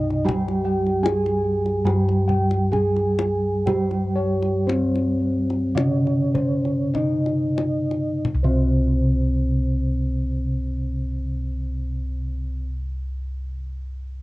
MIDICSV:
0, 0, Header, 1, 7, 480
1, 0, Start_track
1, 0, Tempo, 766284
1, 165, Time_signature, 4, 2, 24, 8
1, 648, Tempo, 818554
1, 1128, Tempo, 873362
1, 1608, Tempo, 934579
1, 2088, Tempo, 1005025
1, 2568, Tempo, 1086957
1, 3048, Tempo, 1183432
1, 3528, Tempo, 1298701
1, 4008, Tempo, 1363636
1, 6116, End_track
2, 0, Start_track
2, 0, Title_t, "Bronze metallophone"
2, 0, Program_c, 0, 11
2, 0, Note_on_c, 0, 75, 68
2, 144, Note_off_c, 0, 75, 0
2, 161, Note_on_c, 0, 79, 69
2, 384, Note_off_c, 0, 79, 0
2, 402, Note_on_c, 0, 79, 60
2, 630, Note_off_c, 0, 79, 0
2, 649, Note_on_c, 0, 80, 77
2, 869, Note_off_c, 0, 80, 0
2, 887, Note_on_c, 0, 80, 57
2, 1113, Note_off_c, 0, 80, 0
2, 1133, Note_on_c, 0, 79, 66
2, 1351, Note_off_c, 0, 79, 0
2, 1366, Note_on_c, 0, 79, 66
2, 1592, Note_off_c, 0, 79, 0
2, 1610, Note_on_c, 0, 80, 69
2, 1829, Note_off_c, 0, 80, 0
2, 1847, Note_on_c, 0, 80, 58
2, 2073, Note_off_c, 0, 80, 0
2, 2086, Note_on_c, 0, 79, 58
2, 2306, Note_off_c, 0, 79, 0
2, 2327, Note_on_c, 0, 79, 55
2, 2553, Note_off_c, 0, 79, 0
2, 2567, Note_on_c, 0, 72, 55
2, 2786, Note_off_c, 0, 72, 0
2, 2803, Note_on_c, 0, 72, 50
2, 3031, Note_off_c, 0, 72, 0
2, 3050, Note_on_c, 0, 73, 62
2, 3268, Note_off_c, 0, 73, 0
2, 3282, Note_on_c, 0, 73, 62
2, 3512, Note_off_c, 0, 73, 0
2, 3528, Note_on_c, 0, 75, 59
2, 3748, Note_off_c, 0, 75, 0
2, 3759, Note_on_c, 0, 75, 66
2, 3992, Note_off_c, 0, 75, 0
2, 4077, Note_on_c, 0, 72, 72
2, 5560, Note_off_c, 0, 72, 0
2, 6116, End_track
3, 0, Start_track
3, 0, Title_t, "Kettle gongs"
3, 0, Program_c, 1, 14
3, 166, Note_on_c, 1, 80, 61
3, 406, Note_on_c, 1, 79, 65
3, 432, Note_off_c, 1, 80, 0
3, 646, Note_on_c, 1, 80, 77
3, 677, Note_off_c, 1, 79, 0
3, 912, Note_off_c, 1, 80, 0
3, 1128, Note_on_c, 1, 80, 58
3, 1360, Note_on_c, 1, 79, 69
3, 1392, Note_off_c, 1, 80, 0
3, 1607, Note_on_c, 1, 80, 58
3, 1634, Note_off_c, 1, 79, 0
3, 1872, Note_off_c, 1, 80, 0
3, 2088, Note_on_c, 1, 72, 52
3, 2324, Note_on_c, 1, 73, 69
3, 2353, Note_off_c, 1, 72, 0
3, 2569, Note_on_c, 1, 72, 71
3, 2597, Note_off_c, 1, 73, 0
3, 2835, Note_off_c, 1, 72, 0
3, 3051, Note_on_c, 1, 75, 59
3, 3288, Note_on_c, 1, 72, 72
3, 3317, Note_off_c, 1, 75, 0
3, 3533, Note_on_c, 1, 75, 69
3, 3562, Note_off_c, 1, 72, 0
3, 3799, Note_off_c, 1, 75, 0
3, 4083, Note_on_c, 1, 72, 53
3, 5567, Note_off_c, 1, 72, 0
3, 6116, End_track
4, 0, Start_track
4, 0, Title_t, "Bronze metallophone"
4, 0, Program_c, 2, 11
4, 0, Note_on_c, 2, 63, 76
4, 161, Note_off_c, 2, 63, 0
4, 162, Note_on_c, 2, 67, 96
4, 647, Note_off_c, 2, 67, 0
4, 647, Note_on_c, 2, 68, 88
4, 1127, Note_on_c, 2, 67, 86
4, 1128, Note_off_c, 2, 68, 0
4, 1603, Note_on_c, 2, 68, 93
4, 1608, Note_off_c, 2, 67, 0
4, 2086, Note_off_c, 2, 68, 0
4, 2099, Note_on_c, 2, 67, 99
4, 2573, Note_off_c, 2, 67, 0
4, 2577, Note_on_c, 2, 60, 92
4, 3053, Note_off_c, 2, 60, 0
4, 3056, Note_on_c, 2, 61, 90
4, 3529, Note_on_c, 2, 63, 86
4, 3532, Note_off_c, 2, 61, 0
4, 4009, Note_off_c, 2, 63, 0
4, 4084, Note_on_c, 2, 60, 68
4, 5567, Note_off_c, 2, 60, 0
4, 6116, End_track
5, 0, Start_track
5, 0, Title_t, "Kettle gongs"
5, 0, Program_c, 3, 14
5, 0, Note_on_c, 3, 43, 65
5, 160, Note_on_c, 3, 67, 78
5, 621, Note_off_c, 3, 43, 0
5, 645, Note_on_c, 3, 61, 43
5, 692, Note_off_c, 3, 61, 0
5, 1124, Note_on_c, 3, 43, 67
5, 1585, Note_off_c, 3, 67, 0
5, 1609, Note_on_c, 3, 61, 49
5, 1650, Note_off_c, 3, 61, 0
5, 2093, Note_on_c, 3, 67, 64
5, 2547, Note_off_c, 3, 43, 0
5, 2571, Note_on_c, 3, 61, 43
5, 2606, Note_off_c, 3, 61, 0
5, 3049, Note_on_c, 3, 48, 72
5, 3515, Note_off_c, 3, 67, 0
5, 3531, Note_on_c, 3, 61, 50
5, 3561, Note_off_c, 3, 61, 0
5, 4047, Note_on_c, 3, 36, 90
5, 4475, Note_off_c, 3, 48, 0
5, 5531, Note_off_c, 3, 36, 0
5, 6116, End_track
6, 0, Start_track
6, 0, Title_t, "Bronze metallophone"
6, 0, Program_c, 4, 11
6, 0, Note_on_c, 4, 48, 75
6, 155, Note_on_c, 4, 55, 71
6, 157, Note_off_c, 4, 48, 0
6, 1120, Note_off_c, 4, 55, 0
6, 1127, Note_on_c, 4, 55, 74
6, 2088, Note_off_c, 4, 55, 0
6, 2096, Note_on_c, 4, 55, 62
6, 3046, Note_on_c, 4, 49, 65
6, 3052, Note_off_c, 4, 55, 0
6, 4008, Note_off_c, 4, 49, 0
6, 4081, Note_on_c, 4, 48, 76
6, 5565, Note_off_c, 4, 48, 0
6, 6116, End_track
7, 0, Start_track
7, 0, Title_t, "Kendang"
7, 66, Note_on_c, 9, 62, 23
7, 128, Note_off_c, 9, 62, 0
7, 180, Note_on_c, 9, 63, 44
7, 180, Note_on_c, 9, 64, 73
7, 243, Note_off_c, 9, 63, 0
7, 243, Note_off_c, 9, 64, 0
7, 303, Note_on_c, 9, 62, 23
7, 366, Note_off_c, 9, 62, 0
7, 542, Note_on_c, 9, 62, 24
7, 605, Note_off_c, 9, 62, 0
7, 661, Note_on_c, 9, 63, 63
7, 720, Note_off_c, 9, 63, 0
7, 780, Note_on_c, 9, 62, 27
7, 839, Note_off_c, 9, 62, 0
7, 1013, Note_on_c, 9, 62, 22
7, 1072, Note_off_c, 9, 62, 0
7, 1135, Note_on_c, 9, 63, 57
7, 1190, Note_off_c, 9, 63, 0
7, 1255, Note_on_c, 9, 62, 22
7, 1310, Note_off_c, 9, 62, 0
7, 1367, Note_on_c, 9, 64, 62
7, 1422, Note_off_c, 9, 64, 0
7, 1488, Note_on_c, 9, 62, 27
7, 1543, Note_off_c, 9, 62, 0
7, 1610, Note_on_c, 9, 64, 61
7, 1661, Note_off_c, 9, 64, 0
7, 1730, Note_on_c, 9, 62, 24
7, 1781, Note_off_c, 9, 62, 0
7, 1845, Note_on_c, 9, 63, 62
7, 1896, Note_off_c, 9, 63, 0
7, 2092, Note_on_c, 9, 63, 51
7, 2092, Note_on_c, 9, 64, 68
7, 2140, Note_off_c, 9, 63, 0
7, 2140, Note_off_c, 9, 64, 0
7, 2207, Note_on_c, 9, 62, 25
7, 2255, Note_off_c, 9, 62, 0
7, 2452, Note_on_c, 9, 62, 23
7, 2500, Note_off_c, 9, 62, 0
7, 2580, Note_on_c, 9, 63, 57
7, 2624, Note_off_c, 9, 63, 0
7, 2696, Note_on_c, 9, 62, 27
7, 2740, Note_off_c, 9, 62, 0
7, 2936, Note_on_c, 9, 62, 25
7, 2980, Note_off_c, 9, 62, 0
7, 3057, Note_on_c, 9, 63, 55
7, 3097, Note_off_c, 9, 63, 0
7, 3176, Note_on_c, 9, 62, 22
7, 3217, Note_off_c, 9, 62, 0
7, 3290, Note_on_c, 9, 64, 70
7, 3331, Note_off_c, 9, 64, 0
7, 3412, Note_on_c, 9, 62, 22
7, 3453, Note_off_c, 9, 62, 0
7, 3532, Note_on_c, 9, 64, 65
7, 3569, Note_off_c, 9, 64, 0
7, 3648, Note_on_c, 9, 62, 26
7, 3685, Note_off_c, 9, 62, 0
7, 3765, Note_on_c, 9, 63, 47
7, 3802, Note_off_c, 9, 63, 0
7, 3889, Note_on_c, 9, 62, 24
7, 3926, Note_off_c, 9, 62, 0
7, 4013, Note_on_c, 9, 64, 81
7, 4048, Note_off_c, 9, 64, 0
7, 6116, End_track
0, 0, End_of_file